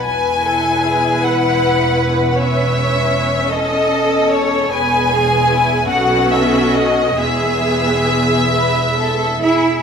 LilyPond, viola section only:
\new Staff \with { instrumentName = "Viola section" } { \time 6/8 \key e \major \tempo 4. = 50 << { b'2.~ | b'4. a'4. | gis'4. a'4. | gis'2~ gis'8. r16 | } \\ { e'2. | cis'2. | b4. cis'4. | b2~ b8. r16 | } >> }